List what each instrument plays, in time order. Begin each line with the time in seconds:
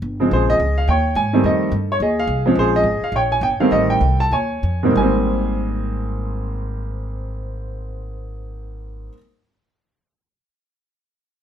0.02 upright bass G1
0.20 grand piano C#3 F3 G#3 C4
0.31 upright bass A#1, grand piano G#4 C5
0.50 grand piano D#5
0.60 upright bass C#2
0.78 grand piano F5
0.88 upright bass D#2, grand piano C#5 G5
1.15 upright bass G#2, grand piano G#5
1.33 grand piano D#3 G3 A3 C4
1.44 upright bass F2, grand piano A4 D#5
1.72 upright bass G2
1.92 grand piano C#5
2.00 upright bass D#2, grand piano G#4 D#5
2.19 grand piano F5
2.27 upright bass C2
2.46 grand piano F3 G#3 C4 C#4
2.55 upright bass A#1, grand piano C5
2.60 grand piano G#4
2.76 grand piano D#5
2.84 upright bass G#1
3.01 grand piano F5, muted upright bass stroke
3.12 upright bass A#1, grand piano C#5
3.16 grand piano G5
3.32 grand piano G#5
3.41 upright bass G1, grand piano G5
3.59 grand piano D#3 G3 A3 C4 F5, muted upright bass stroke
3.71 upright bass A1, grand piano A4 D#5
3.90 grand piano G5
4.01 upright bass C2
4.20 grand piano A5
4.31 upright bass D#2, grand piano C#5 G#5
4.63 upright bass F2
4.83 grand piano G#2 D#3 G3 A#3 C4
4.91 grand piano G#2 G3
4.96 upright bass G#1, grand piano A#3 G#5
5.03 grand piano C4